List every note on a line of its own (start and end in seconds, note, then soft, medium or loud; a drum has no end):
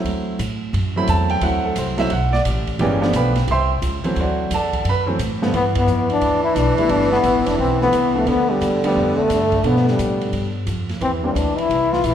0.00 0.37 F#3 medium
0.00 0.37 A3 medium
0.00 0.38 C4 medium
0.00 0.38 E4 medium
0.04 0.38 D2 medium
0.04 kick soft
0.04 ride medium
0.39 0.73 A2 medium
0.39 kick soft
0.39 hi-hat pedal medium
0.39 ride medium
0.73 1.07 F#2 medium
0.73 kick soft
0.73 ride medium
0.96 1.40 F#3 medium
0.96 1.40 A3 medium
0.96 1.40 C4 medium
0.96 1.41 E4 medium
0.96 1.08 B5 loud
1.07 1.41 E2 medium
1.07 1.30 A5 medium
1.07 kick soft
1.07 hi-hat pedal medium
1.07 ride medium
1.29 1.42 G5 medium
1.29 ride soft
1.41 1.75 D2 medium
1.41 1.94 F#3 medium
1.41 1.94 A3 medium
1.41 1.94 C4 medium
1.41 1.95 E4 medium
1.41 1.65 F#5 medium
1.41 kick soft
1.41 ride medium
1.65 1.77 A4 medium
1.76 2.10 C2 medium
1.76 1.99 C5 medium
1.76 kick soft
1.76 hi-hat pedal medium
1.76 ride medium
1.97 2.09 F#3 medium
1.97 2.09 A3 medium
1.97 2.10 C4 medium
1.97 2.10 E4 medium
1.97 2.11 E5 medium
1.97 snare medium
1.97 ride soft
2.10 2.44 B1 medium
2.10 2.33 F#5 medium
2.10 kick soft
2.10 ride medium
2.33 2.40 D5 medium
2.33 snare soft
2.45 2.78 A1 medium
2.45 kick soft
2.45 hi-hat pedal medium
2.45 ride medium
2.67 kick soft
2.67 ride soft
2.79 3.12 G1 medium
2.79 3.00 E3 medium
2.79 3.00 G#3 medium
2.79 3.00 A#3 medium
2.79 3.00 C#4 medium
2.79 3.12 G4 medium
2.79 3.12 B4 medium
2.79 3.13 D5 medium
2.79 3.12 G5 medium
2.79 kick soft
2.79 ride medium
3.01 3.31 F3 medium
3.01 3.31 A3 medium
3.01 3.32 B3 medium
3.01 3.32 D4 medium
3.01 snare medium
3.13 3.47 B1 medium
3.13 3.47 B4 medium
3.13 3.47 F5 medium
3.13 3.47 G5 medium
3.13 3.47 B5 medium
3.13 kick soft
3.13 hi-hat pedal medium
3.13 ride medium
3.35 snare soft
3.35 ride medium
3.47 3.81 C2 medium
3.47 3.71 E5 medium
3.47 3.71 C6 medium
3.47 kick soft
3.47 ride medium
3.52 3.72 C5 medium
3.52 3.72 G5 medium
3.82 4.03 C#2 medium
3.82 kick soft
3.82 hi-hat pedal medium
3.82 ride medium
4.04 4.48 E3 medium
4.04 4.48 F#3 medium
4.04 4.49 A3 medium
4.04 4.49 C4 medium
4.04 muted upright bass stroke soft
4.04 ride medium
4.16 4.49 D2 medium
4.16 kick soft
4.16 ride medium
4.20 4.50 F#4 medium
4.20 4.50 C5 medium
4.20 4.51 D5 medium
4.20 4.50 F#5 medium
4.51 4.84 E2 medium
4.51 4.85 A4 medium
4.51 4.84 A5 medium
4.51 kick soft
4.51 hi-hat pedal medium
4.51 ride medium
4.55 4.85 D5 medium
4.55 4.85 F#5 medium
4.73 kick medium
4.73 ride medium
4.85 5.18 F#2 medium
4.85 kick soft
4.85 ride medium
4.89 5.02 B4 medium
4.89 5.01 B5 medium
5.06 5.18 E3 medium
5.06 5.18 F#3 medium
5.06 5.18 A3 medium
5.06 5.18 C4 medium
5.19 5.52 A2 medium
5.19 kick soft
5.19 hi-hat pedal medium
5.19 ride medium
5.42 5.52 G2 medium
5.42 5.53 D3 medium
5.42 5.53 F3 medium
5.42 5.53 A3 medium
5.42 5.53 B3 medium
5.42 snare medium
5.53 5.86 G2 medium
5.53 8.29 E3 loud
5.53 5.65 B3 medium
5.53 kick soft
5.53 ride medium
5.75 6.09 B3 medium
5.75 kick medium
5.75 ride medium
5.86 6.20 F2 medium
5.86 hi-hat pedal medium
6.10 6.43 D4 loud
6.10 ride soft
6.21 6.55 D2 medium
6.21 kick soft
6.21 ride medium
6.45 6.59 E4 medium
6.55 6.76 B1 medium
6.55 6.78 D4 loud
6.55 kick soft
6.55 snare soft
6.55 hi-hat pedal medium
6.55 ride medium
6.77 7.22 D3 medium
6.77 7.22 G3 medium
6.77 7.22 A3 medium
6.77 7.23 B3 medium
6.77 6.92 E4 loud
6.77 muted upright bass stroke soft
6.77 kick soft
6.77 ride soft
6.89 7.23 G1 medium
6.89 7.12 D4 loud
6.89 kick soft
6.89 ride medium
7.01 snare soft
7.12 7.49 B3 medium
7.12 snare soft
7.23 7.36 A1 medium
7.23 kick soft
7.23 hi-hat pedal soft
7.23 ride medium
7.36 7.47 G1 soft
7.46 7.58 F1 medium
7.46 7.58 D4 medium
7.46 snare soft
7.46 ride medium
7.58 7.91 B1 medium
7.58 7.79 C4 medium
7.58 kick soft
7.81 7.92 D3 medium
7.81 7.92 F3 medium
7.81 7.92 A3 medium
7.81 8.14 B3 medium
7.81 7.93 B3 medium
7.81 snare soft
7.92 8.26 C2 medium
7.92 kick soft
7.92 hi-hat pedal medium
7.92 ride medium
8.15 8.26 D3 medium
8.15 8.26 F3 medium
8.15 8.26 A3 medium
8.15 8.30 A3 medium
8.15 8.27 B3 medium
8.27 8.60 D2 medium
8.27 8.79 D3 medium
8.27 10.60 D3 loud
8.27 8.79 F3 medium
8.27 8.80 A3 medium
8.27 8.80 B3 medium
8.27 8.53 B3 loud
8.27 kick soft
8.27 ride medium
8.51 8.84 G3 medium
8.61 8.82 E2 medium
8.61 kick soft
8.61 hi-hat pedal medium
8.61 ride medium
8.84 9.28 D3 medium
8.84 9.28 F3 medium
8.84 9.21 G3 medium
8.84 9.28 A3 medium
8.84 9.28 B3 medium
8.84 muted upright bass stroke soft
8.84 ride medium
8.95 9.16 F2 medium
8.95 kick soft
9.18 9.68 A3 medium
9.18 muted upright bass stroke soft
9.30 9.63 G2 medium
9.30 kick soft
9.30 hi-hat pedal medium
9.30 ride medium
9.52 kick medium
9.52 ride soft
9.63 9.97 B2 medium
9.63 10.60 D3 medium
9.63 10.60 F3 medium
9.63 10.60 A3 medium
9.63 10.61 B3 medium
9.63 9.88 B3 medium
9.63 kick soft
9.63 ride medium
9.76 snare soft
9.88 10.52 G3 medium
9.88 snare soft
9.99 10.32 A2 medium
9.99 kick soft
9.99 hi-hat pedal medium
9.99 ride medium
10.21 ride soft
10.33 10.66 G2 medium
10.33 kick soft
10.33 ride medium
10.67 11.00 F2 medium
10.67 kick soft
10.67 hi-hat pedal medium
10.67 ride medium
10.89 snare soft
10.89 ride soft
11.01 11.34 E2 medium
11.01 12.14 E3 loud
11.01 11.12 C4 medium
11.01 kick soft
11.01 ride medium
11.23 11.34 E3 medium
11.23 11.34 G3 soft
11.23 11.34 A#3 soft
11.23 11.33 C4 medium
11.23 11.34 D4 medium
11.34 11.56 D2 medium
11.34 11.37 C#4 medium
11.34 11.60 D4 medium
11.34 kick soft
11.34 hi-hat pedal soft
11.34 ride medium
11.58 11.95 E4 loud
11.58 muted upright bass stroke soft
11.58 ride soft
11.70 12.03 C2 medium
11.70 kick soft
11.70 ride medium
11.93 12.07 F4 medium
11.93 snare soft
12.04 12.14 A#1 medium
12.04 12.14 E4 loud
12.04 kick soft
12.04 hi-hat pedal medium
12.04 ride medium